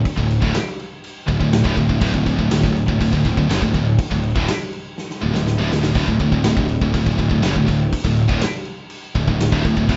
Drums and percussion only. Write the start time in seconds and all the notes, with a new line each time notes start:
0.05 kick, crash
0.18 kick
0.31 crash
0.42 kick
0.54 snare, crash
0.80 crash
1.04 crash
1.28 kick, crash
1.41 kick
1.53 snare, crash
1.65 kick
1.77 kick, crash
1.89 kick
2.01 kick, crash
2.14 kick
2.26 kick, crash
2.39 kick
2.51 snare, crash
2.63 kick
2.76 crash
2.88 kick
3.01 kick, crash
3.13 kick
3.25 kick, crash
3.37 kick
3.50 snare, crash
3.62 kick
3.74 kick, crash
3.98 kick, crash
4.11 kick
4.24 crash
4.36 kick
4.48 snare, crash
4.73 crash
4.98 snare
5.10 snare
5.35 snare
5.47 snare
5.72 snare
5.83 snare
5.95 kick, crash
6.08 kick
6.19 kick, crash
6.32 kick
6.44 snare, crash
6.57 kick
6.69 crash
6.81 kick
6.94 kick, crash
7.07 kick
7.19 kick, crash
7.31 kick
7.43 snare, crash
7.56 kick
7.68 kick, crash
7.93 kick, crash
8.05 kick
8.17 crash
8.29 kick
8.41 snare, crash
8.65 crash
8.90 crash
9.15 kick, crash
9.28 kick
9.40 snare, crash
9.52 kick
9.65 kick, crash
9.77 kick
9.89 kick, crash